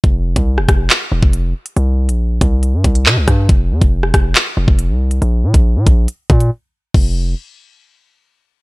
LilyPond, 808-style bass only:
\new Staff \with { instrumentName = "808-style bass" } { \clef bass \time 4/4 \key c \phrygian \tempo 4 = 139 f,,8. c,8 e,,16 f,,8 r8 e,,16 f,,8. r8 | c,8. bes,,8. c,8. g,16 c,8 c16 c,16 g,8 | f,,8 f,16 f,,8. f,,8 r8 f,,16 f,,8 c,8. | bes,,8 bes,16 bes,,8 bes,16 bes,,8 r8 bes,8 r4 |
f,,4 r2. | }